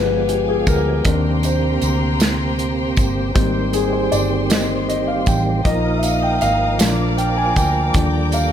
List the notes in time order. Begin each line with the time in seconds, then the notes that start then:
Already playing: G1 F3 G#3 B3 G4 B4 F5 G5 G#5
0.29 G4, closed hi-hat
0.49 G#4
0.67 D2 A#4, kick, closed hi-hat, tambourine
1.04 D#2 C3 D#3 A#3 C4 D4 G4 C5 A#5 C6, kick, closed hi-hat
1.43 C5, closed hi-hat, tambourine
1.82 D2, closed hi-hat, tambourine
2.20 snare, closed hi-hat, tambourine
2.59 closed hi-hat
2.96 G1, kick, closed hi-hat, tambourine
3.35 G#1 D#3 G3 A#3 C4 G4 C6, kick, closed hi-hat
3.73 G#4, closed hi-hat, tambourine
3.93 C5
4.12 G1 D5, closed hi-hat, tambourine
4.50 G3 A#3 C4 D#5, snare, closed hi-hat, tambourine
4.88 D#5, closed hi-hat
5.08 F5
5.26 A1 G5, kick, closed hi-hat, tambourine
5.64 A#1 F3 A#3 D4 D#4 A#4 D#5 F5 A#5 D#6, kick, closed hi-hat
5.71 D#4
5.98 E5
6.03 F5, closed hi-hat, tambourine
6.23 G5
6.41 G#1 F5, closed hi-hat, tambourine
6.78 A#1 F3 A#3 C4 D4 A#4 D5 D6, snare, closed hi-hat, tambourine
6.87 D4
7.17 G5, closed hi-hat
7.37 G#5
7.56 D2 G5, kick, closed hi-hat, tambourine
7.94 D#2 D3 F3 G3 A#3 D4 G4 D5 G5, kick, closed hi-hat
8.32 F5, closed hi-hat, tambourine